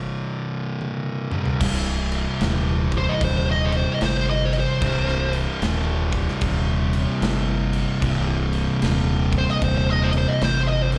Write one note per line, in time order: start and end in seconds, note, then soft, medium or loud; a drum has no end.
0.00 1.30 C2 medium
0.00 1.31 G2 loud
0.00 1.31 C3 loud
0.81 high tom medium
1.31 1.59 C2 medium
1.31 1.61 G2 medium
1.31 1.60 C3 medium
1.31 mid tom medium
1.46 floor tom medium
1.61 2.25 C1 medium
1.61 4.82 C2 loud
1.61 4.80 G2 loud
1.61 4.84 C3 loud
1.61 kick loud
1.61 crash loud
1.61 crash medium
1.87 snare soft
2.12 crash medium
2.41 3.04 D#1 medium
2.41 snare loud
2.41 crash medium
2.92 kick medium
2.92 crash medium
2.98 3.13 C5 medium
3.09 3.20 D#5 medium
3.21 3.84 D#1 loud
3.21 3.36 C5 medium
3.21 kick loud
3.21 crash medium
3.37 3.48 C5 medium
3.51 3.73 D#5 medium
3.65 3.71 C5 medium
3.72 crash medium
3.77 3.92 C5 medium
3.92 4.02 D#5 medium
4.01 4.65 G1 medium
4.01 4.16 C5 medium
4.01 snare loud
4.01 crash medium
4.17 4.27 C5 medium
4.30 4.53 D#5 medium
4.45 4.51 C5 medium
4.53 crash medium
4.60 5.35 C5 medium
4.81 5.45 C1 loud
4.81 8.01 C2 medium
4.81 8.01 G2 loud
4.81 8.03 C3 loud
4.81 kick loud
4.81 crash medium
5.08 snare soft
5.33 crash medium
5.61 6.25 D#1 medium
5.61 snare loud
5.61 crash medium
6.12 kick loud
6.12 crash medium
6.28 snare soft
6.41 7.05 D#1 loud
6.41 kick loud
6.41 crash medium
6.93 crash medium
7.21 7.84 G1 medium
7.21 snare loud
7.21 crash medium
7.73 crash medium
8.01 8.65 C1 loud
8.01 10.98 C2 loud
8.01 10.98 G2 loud
8.01 10.98 C3 loud
8.01 kick loud
8.01 crash medium
8.53 crash medium
8.82 9.45 D#1 medium
8.82 snare loud
8.82 crash medium
9.32 kick medium
9.32 crash medium
9.38 9.50 C5 loud
9.49 9.60 D#5 medium
9.49 snare soft
9.62 10.24 D#1 loud
9.62 9.76 C5 medium
9.62 kick loud
9.62 crash medium
9.78 9.90 C5 loud
9.90 10.12 D#5 loud
10.04 10.10 C5 medium
10.13 crash medium
10.18 10.32 C5 medium
10.28 10.39 D#5 medium
10.41 10.98 G1 medium
10.41 10.54 C5 medium
10.41 snare loud
10.41 crash medium
10.55 10.67 C5 medium
10.67 10.82 D#5 medium
10.82 10.89 C5 medium
10.92 crash medium